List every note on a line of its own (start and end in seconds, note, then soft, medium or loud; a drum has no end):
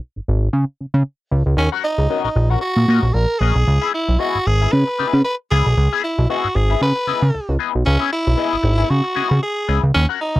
0.16 0.21 G#1 soft
0.28 0.49 G#1 loud
0.53 0.65 C#3 loud
0.81 0.86 C#3 soft
0.94 1.03 C#3 loud
1.31 1.43 C#2 loud
1.46 1.55 C#2 medium
1.57 1.69 D#2 loud
1.57 1.70 C#4 loud
1.57 muted clean electric guitar stroke soft
1.72 1.83 C#4 medium
1.72 1.83 F#4 medium
1.72 1.84 A#4 medium
1.72 1.85 F#5 medium
1.84 2.22 D#4 loud
1.84 muted clean electric guitar stroke soft
1.98 2.08 C#2 loud
1.98 muted clean electric guitar stroke soft
2.10 2.28 C#4 medium
2.10 2.28 F#4 medium
2.10 2.28 A#4 medium
2.10 2.29 D#5 medium
2.24 2.29 A#1 soft
2.24 2.52 D#4 medium
2.36 2.57 A#1 medium
2.36 muted clean electric guitar stroke soft
2.50 2.61 C#4 soft
2.50 2.61 F#4 medium
2.50 2.61 A#4 medium
2.50 2.62 F#5 medium
2.61 3.15 F#4 loud
2.61 muted clean electric guitar stroke soft
2.76 2.86 A#2 medium
2.76 muted clean electric guitar stroke soft
2.88 3.00 A#2 loud
2.88 3.06 C#4 medium
2.88 3.04 F#4 medium
2.88 3.03 A#4 medium
2.88 3.03 D#5 medium
3.02 3.12 A#1 medium
3.02 muted clean electric guitar stroke medium
3.14 3.26 A#1 loud
3.14 3.41 A#4 loud
3.14 muted clean electric guitar stroke medium
3.39 3.53 A#1 medium
3.39 3.56 C#4 medium
3.39 3.56 F#4 medium
3.39 3.93 G#4 loud
3.39 3.55 A#4 medium
3.39 3.54 D#5 medium
3.55 3.65 B1 medium
3.55 muted clean electric guitar stroke medium
3.67 3.79 C#2 loud
3.67 muted clean electric guitar stroke soft
3.82 3.92 B3 medium
3.82 3.92 E4 medium
3.82 3.93 G#4 medium
3.82 3.94 E5 medium
3.93 4.20 E4 loud
3.93 muted clean electric guitar stroke soft
4.08 4.18 B1 medium
4.08 muted clean electric guitar stroke medium
4.19 4.37 B3 medium
4.19 4.37 E4 medium
4.19 4.48 F#4 loud
4.19 4.37 G#4 medium
4.19 4.37 D#5 medium
4.35 4.39 G#1 soft
4.47 4.67 G#1 medium
4.47 4.74 G#4 loud
4.47 muted clean electric guitar stroke soft
4.62 4.71 B3 soft
4.62 4.72 E4 medium
4.62 4.72 G#4 medium
4.62 4.72 E5 medium
4.72 4.84 C#3 loud
4.72 5.24 B4 loud
4.87 muted clean electric guitar stroke medium
4.99 5.05 C#3 soft
4.99 5.19 B3 medium
4.99 5.14 E4 medium
4.99 5.13 G#4 medium
4.99 5.13 D#5 medium
5.13 5.22 C#3 loud
5.13 muted clean electric guitar stroke medium
5.24 5.36 B4 loud
5.24 muted clean electric guitar stroke soft
5.51 5.63 C#2 medium
5.51 5.65 B3 medium
5.51 5.65 E4 medium
5.51 5.99 G#4 loud
5.51 5.66 G#4 medium
5.51 5.65 D#5 medium
5.66 5.75 B1 loud
5.66 muted clean electric guitar stroke medium
5.77 5.89 C#2 loud
5.77 muted clean electric guitar stroke soft
5.93 6.03 B3 medium
5.93 6.03 E4 medium
5.93 6.03 G#4 medium
5.93 6.04 E5 medium
6.04 6.28 E4 medium
6.04 muted clean electric guitar stroke soft
6.18 6.27 B1 loud
6.18 muted clean electric guitar stroke medium
6.30 6.47 B3 loud
6.30 6.47 E4 medium
6.30 6.57 F#4 loud
6.30 6.47 G#4 medium
6.30 6.47 D#5 loud
6.44 6.49 G#1 soft
6.55 6.76 G#1 medium
6.55 6.81 G#4 loud
6.55 muted clean electric guitar stroke soft
6.70 6.80 B3 medium
6.70 6.81 E4 medium
6.70 6.81 G#4 medium
6.70 6.81 E5 medium
6.81 6.93 C#3 loud
6.81 7.56 B4 loud
6.81 muted clean electric guitar stroke soft
6.96 muted clean electric guitar stroke soft
7.07 7.13 C#3 medium
7.07 7.25 B3 medium
7.07 7.22 E4 loud
7.07 7.21 G#4 medium
7.07 7.21 D#5 medium
7.22 7.31 C#3 loud
7.22 muted clean electric guitar stroke medium
7.34 7.40 C#2 medium
7.34 muted clean electric guitar stroke soft
7.49 7.57 C#2 medium
7.59 7.73 B3 medium
7.59 7.73 E4 medium
7.59 7.72 G#4 medium
7.59 7.72 D#5 medium
7.73 7.84 B1 medium
7.73 muted clean electric guitar stroke medium
7.85 7.98 C#2 loud
7.85 8.10 C#4 loud
7.85 muted clean electric guitar stroke medium
7.99 8.10 B3 medium
7.99 8.11 E4 medium
7.99 8.11 G#4 loud
7.99 8.12 E5 medium
8.13 8.91 E4 loud
8.26 8.36 B1 loud
8.26 muted clean electric guitar stroke soft
8.37 8.55 B3 medium
8.37 8.55 E4 medium
8.37 8.55 G#4 medium
8.37 8.55 D#5 loud
8.53 8.57 G#1 soft
8.62 8.84 G#1 loud
8.62 muted clean electric guitar stroke soft
8.78 8.88 B3 medium
8.78 8.88 E4 medium
8.78 8.88 G#4 medium
8.78 8.89 E5 medium
8.89 9.02 C#3 loud
8.89 9.42 F#4 loud
8.89 muted clean electric guitar stroke soft
9.04 muted clean electric guitar stroke medium
9.15 9.22 C#3 medium
9.15 9.33 B3 medium
9.15 9.30 E4 medium
9.15 9.29 G#4 medium
9.15 9.29 D#5 medium
9.30 9.40 C#3 loud
9.30 muted clean electric guitar stroke soft
9.42 9.80 G#4 loud
9.42 muted clean electric guitar stroke soft
9.68 9.80 C#2 medium
9.68 9.82 B3 medium
9.68 9.82 E4 medium
9.68 9.82 G#4 medium
9.68 9.82 D#5 medium
9.83 9.92 C#2 medium
9.83 muted clean electric guitar stroke soft
9.94 10.06 D#2 loud
9.94 10.06 C#4 loud
9.94 muted clean electric guitar stroke soft
10.09 10.19 C#4 medium
10.09 10.20 F#4 medium
10.09 10.20 A#4 medium
10.09 10.21 F#5 medium
10.20 10.40 D#4 loud
10.20 muted clean electric guitar stroke soft
10.36 10.40 C#2 loud
10.36 muted clean electric guitar stroke soft